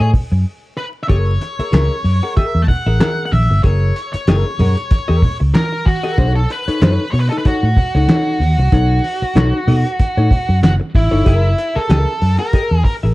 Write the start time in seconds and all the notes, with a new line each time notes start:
0.00 A2 A4 C#5 D#5
0.14 muted hollow-body jazz guitar stroke, kick, open hi-hat, low conga
0.32 F#2, muted hollow-body jazz guitar stroke
0.77 B4
1.03 E5
1.08 F#1 G#4 A#4 C#5 E5, kick, closed hi-hat, muted conga
1.41 muted hollow-body jazz guitar stroke, closed hi-hat, muted conga
1.59 G#4 A#4 E5, muted fingered electric bass stroke, closed hi-hat
1.72 C#2 G#4 A#4 E5, snare, clap, closed hi-hat, high conga
2.04 F#2, muted hollow-body jazz guitar stroke, open hi-hat
2.23 G#4 A#4 F#5
2.37 G#4 A#4 E5, muted fingered electric bass stroke, kick, closed hi-hat, muted conga
2.55 E2
2.62 A5
2.68 F#5, muted hollow-body jazz guitar stroke, kick, open hi-hat, low conga
2.86 A1 G#4 A#4 E5
3.00 G#4 A#4 E5, snare, clap, closed hi-hat, high conga
3.26 F#5
3.32 A#1 E5, muted hollow-body jazz guitar stroke, open hi-hat, high conga
3.50 G1, muted hollow-body jazz guitar stroke
3.63 F#1 G#4 A#4 C#5 E5, kick, closed hi-hat, muted conga
3.96 closed hi-hat
4.13 C#5, muted fingered electric bass stroke, muted hollow-body jazz guitar stroke, closed hi-hat
4.27 F#1 G#4 A#4 E5, snare, clap, closed hi-hat, high conga
4.46 muted hollow-body jazz guitar stroke
4.59 F#2 G#4 A#4 F#5, open hi-hat, low conga
4.77 muted hollow-body jazz guitar stroke, closed hi-hat
4.91 muted hollow-body jazz guitar stroke, muted fingered electric bass stroke, kick, closed hi-hat, muted conga
5.08 E2 G#4 A#4 E5
5.22 muted hollow-body jazz guitar stroke, kick, open hi-hat, low conga
5.40 C#2, muted hollow-body jazz guitar stroke
5.54 A#4, muted hollow-body jazz guitar stroke, snare, clap, closed hi-hat, high conga
5.72 muted hollow-body jazz guitar stroke
5.86 F#4, kick, open hi-hat, high conga
6.03 G#4 A#4 E5
6.18 B1 D#4 A4 C#5, kick, closed hi-hat, muted conga
6.36 A4
6.50 B4, muted hollow-body jazz guitar stroke, closed hi-hat
6.68 D#4 A4 C#5, muted fingered electric bass stroke, closed hi-hat
6.81 F#2 D#4 A4 B4 C#5, snare, clap, closed hi-hat, high conga
7.10 B2 C#5, muted hollow-body jazz guitar stroke, open hi-hat
7.19 B4
7.29 D#4 A4 D#5, closed hi-hat
7.38 B4
7.45 D#4 F#4 A4 C#5, muted fingered electric bass stroke, kick, closed hi-hat, muted conga
7.63 A2
7.77 muted hollow-body jazz guitar stroke, kick, open hi-hat, low conga
7.95 C#2 D#4 A4 C#5
8.08 D#4 A4 C#5, snare, clap, closed hi-hat, high conga
8.40 D#2, muted hollow-body jazz guitar stroke, open hi-hat, high conga
8.58 C2, muted hollow-body jazz guitar stroke
8.72 B1 D#4 A4 C#5, kick, closed hi-hat, muted conga
9.04 open hi-hat, muted conga
9.22 muted fingered electric bass stroke, muted hollow-body jazz guitar stroke
9.35 B1 D#4 A4 C#5, snare, clap, closed hi-hat, high conga
9.54 muted hollow-body jazz guitar stroke
9.68 B2 D#4 A4 D#5, open hi-hat, low conga
9.85 muted hollow-body jazz guitar stroke, closed hi-hat
9.99 muted fingered electric bass stroke, muted hollow-body jazz guitar stroke, kick, closed hi-hat, muted conga
10.17 A2 D#4 A4 C#5
10.31 muted hollow-body jazz guitar stroke, kick, open hi-hat, low conga
10.48 F#2, muted hollow-body jazz guitar stroke
10.63 F#1 F#4, muted hollow-body jazz guitar stroke, snare, clap, closed hi-hat, high conga
10.80 muted hollow-body jazz guitar stroke
10.95 G#1 E4, kick, open hi-hat, high conga
11.11 G1 D#4 A4 C#5
11.25 F#1 G#4 A#4 E5, kick, closed hi-hat
11.58 muted hollow-body jazz guitar stroke, closed hi-hat
11.75 G#4 A4 A#4 E5, muted fingered electric bass stroke
11.89 C#2 G#4 A#4 E5, snare, clap, closed hi-hat
12.21 F#2, muted hollow-body jazz guitar stroke, open hi-hat
12.39 G#4 A#4 F#5
12.53 G#4 A#4 E5, muted fingered electric bass stroke, kick, closed hi-hat
12.71 E2
12.84 A#4, muted hollow-body jazz guitar stroke, kick, open hi-hat
13.03 A1 G#4 A#4 E5